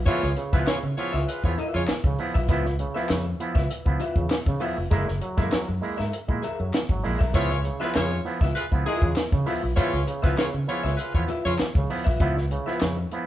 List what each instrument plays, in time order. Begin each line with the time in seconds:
0.05 clav F3 B3 E4, clean electric guitar F4 B4 E5, horn section F4 G#4 C#5, kick, closed hi-hat
0.22 fingered electric bass C#2, muted clean electric guitar stroke, snare
0.36 clav C#3, muted clean electric guitar stroke, closed hi-hat
0.52 fingered electric bass C#2, clav F3 B3 E4, horn section F4 G#4 B4, clean electric guitar F4 B4 E5, kick, snare
0.67 clav C#3, horn section F4 G#4 C#5, muted clean electric guitar stroke, muted fingered electric bass stroke, snare, clap, closed hi-hat
0.83 fingered electric bass C#3, muted clean electric guitar stroke
0.97 clav F3 B3 E4, horn section F4 G#4 C#5, closed hi-hat
1.13 fingered electric bass C#2, clav B3 E4, clean electric guitar F4 B4 E5, snare
1.27 horn section F4 G#4 B4, muted clean electric guitar stroke, closed hi-hat
1.44 fingered electric bass E2, clav F3 B3 E4, horn section F4 G#4 C#5, muted clean electric guitar stroke, kick
1.58 clean electric guitar F4 B4 E5, closed hi-hat
1.74 fingered electric bass F2, clav C#3, horn section F4 G#4 C#5, muted clean electric guitar stroke
1.87 clav B3 E4, muted clean electric guitar stroke, muted fingered electric bass stroke, snare, clap, closed hi-hat
2.04 fingered electric bass C#2, clav C#3, muted clean electric guitar stroke, kick
2.18 clav F3 B3 E4, open hi-hat
2.34 fingered electric bass B1, clean electric guitar F4 B4 E5, kick
2.48 fingered electric bass C#2, clav F3 B3 E4, clean electric guitar F4 B4 E5, kick, closed hi-hat
2.65 muted clean electric guitar stroke, snare
2.79 clav C#3, muted clean electric guitar stroke, closed hi-hat
2.94 clav F3 B3 E4, clean electric guitar F4 B4 E5, snare
3.09 fingered electric bass F2, clav C#3, muted clean electric guitar stroke, snare, clap, closed hi-hat
3.25 muted clean electric guitar stroke
3.40 clav F3 B3 E4, closed hi-hat
3.55 fingered electric bass C#2, clav B3 E4, clean electric guitar F4 B4 E5, kick, snare
3.69 muted clean electric guitar stroke, closed hi-hat
3.85 fingered electric bass C#2, clav F3 B3 E4, muted clean electric guitar stroke, kick
4.00 clean electric guitar F4 B4 E5, closed hi-hat
4.16 fingered electric bass E2, clav C#3, muted clean electric guitar stroke, kick
4.30 clav B3 E4, snare, clap, closed hi-hat
4.46 fingered electric bass C#3, clav C#3, muted clean electric guitar stroke, kick
4.60 clav F3 B3 E4, clean electric guitar F4 B4 E5, open hi-hat
4.77 fingered electric bass F1, muted clean electric guitar stroke
4.91 fingered electric bass F#1, clav G#3 A#3 E4, clean electric guitar G#4 A#4 E5, kick, closed hi-hat
5.07 fingered electric bass F#1, muted clean electric guitar stroke, snare
5.21 clav F#3, muted clean electric guitar stroke, closed hi-hat
5.37 fingered electric bass F#2, clav G#3 A#3 E4, clean electric guitar G#4 A#4 E5, kick, snare
5.51 clav F#3, muted clean electric guitar stroke, muted fingered electric bass stroke, snare, clap, closed hi-hat
5.67 fingered electric bass F#2, muted clean electric guitar stroke
5.81 clav G#3 A#3 E4, open hi-hat
5.98 fingered electric bass G#2, clav A#3 E4, clean electric guitar G#4 A#4 E5, snare
6.12 muted clean electric guitar stroke, closed hi-hat
6.28 fingered electric bass A#2, clav G#3 A#3 E4, muted clean electric guitar stroke, kick
6.42 clean electric guitar G#4 A#4 E5, closed hi-hat
6.59 fingered electric bass F#2, clav F#3, muted clean electric guitar stroke
6.73 clav A#3 E4, muted clean electric guitar stroke, snare, clap, closed hi-hat
6.89 fingered electric bass G#1, clav F#3, muted clean electric guitar stroke, kick
7.03 fingered electric bass A#1, clav G#3 A#3 E4, open hi-hat
7.19 fingered electric bass B1, clean electric guitar G#4 A#4 E5, kick
7.33 fingered electric bass C#2, clav F3 B3 E4, clean electric guitar F4 B4 E5, horn section F4 G#4 C#5, kick, closed hi-hat
7.50 muted clean electric guitar stroke, snare
7.64 clav C#3, muted clean electric guitar stroke, closed hi-hat
7.80 clav F3 B3 E4, horn section F4 G#4 B4, clean electric guitar F4 B4 E5, snare
7.95 fingered electric bass F2, clav C#3, horn section F4 G#4 C#5, muted clean electric guitar stroke, snare, clap, closed hi-hat
8.12 muted clean electric guitar stroke
8.25 clav F3 B3 E4, open hi-hat
8.41 fingered electric bass C#2, clav B3 E4, clean electric guitar F4 B4 E5, kick, snare
8.55 horn section F4 G#4 B4, muted clean electric guitar stroke, closed hi-hat
8.71 fingered electric bass C#2, clav F3 B3 E4, muted clean electric guitar stroke, kick
8.86 horn section G#3 F4 G#4, clean electric guitar F4 B4 E5, closed hi-hat
9.02 fingered electric bass E2, clav C#3, muted clean electric guitar stroke, kick
9.16 clav B3 E4, snare, clap, closed hi-hat
9.32 clav C#3, fingered electric bass C#3, muted clean electric guitar stroke, kick
9.46 clav F3 B3 E4, clean electric guitar F4 B4 E5, open hi-hat
9.63 fingered electric bass B1, muted clean electric guitar stroke
9.76 clav F3 B3 E4, clean electric guitar F4 B4 E5, horn section F4 G#4 C#5, kick, closed hi-hat
9.92 fingered electric bass C#2, muted clean electric guitar stroke, snare
10.07 clav C#3, muted clean electric guitar stroke, closed hi-hat
10.22 fingered electric bass C#2, clav F3 B3 E4, horn section F4 G#4 B4, clean electric guitar F4 B4 E5, kick, snare
10.37 clav C#3, horn section F4 G#4 C#5, muted clean electric guitar stroke, muted fingered electric bass stroke, snare, clap, closed hi-hat
10.53 fingered electric bass C#3, muted clean electric guitar stroke
10.67 clav F3 B3 E4, horn section F4 G#4 C#5, closed hi-hat
10.83 fingered electric bass C#2, clav B3 E4, clean electric guitar F4 B4 E5, snare
10.97 horn section F4 G#4 B4, muted clean electric guitar stroke, closed hi-hat
11.14 fingered electric bass E2, clav F3 B3 E4, horn section F4 G#4 C#5, muted clean electric guitar stroke, kick
11.28 clean electric guitar F4 B4 E5, closed hi-hat
11.44 fingered electric bass F2, clav C#3, horn section F4 G#4 C#5, muted clean electric guitar stroke
11.59 clav B3 E4, muted clean electric guitar stroke, muted fingered electric bass stroke, snare, clap, closed hi-hat
11.75 fingered electric bass C#2, clav C#3, muted clean electric guitar stroke, kick
11.90 clav F3 B3 E4, open hi-hat
12.05 fingered electric bass B1, clean electric guitar F4 B4 E5, kick
12.19 fingered electric bass C#2, clav F3 B3 E4, clean electric guitar F4 B4 E5, kick, closed hi-hat
12.36 muted clean electric guitar stroke, snare
12.50 clav C#3, muted clean electric guitar stroke, closed hi-hat
12.66 clav F3 B3 E4, clean electric guitar F4 B4 E5, snare
12.80 fingered electric bass F2, clav C#3, muted clean electric guitar stroke, snare, clap, closed hi-hat
12.97 muted clean electric guitar stroke
13.11 clav F3 B3 E4, closed hi-hat